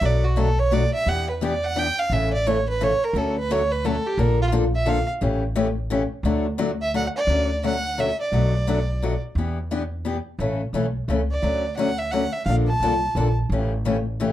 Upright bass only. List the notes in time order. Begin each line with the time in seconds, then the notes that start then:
0.01 B1
1.06 E2
2.10 A1
3.13 D2
4.17 A#1
5.22 A1
6.23 D2
7.27 D2
8.32 B1
9.35 E2
10.39 A1
10.73 B1
11.08 C#2
11.42 D2
12.46 A#1
12.80 C2
13.15 A#1
13.49 A1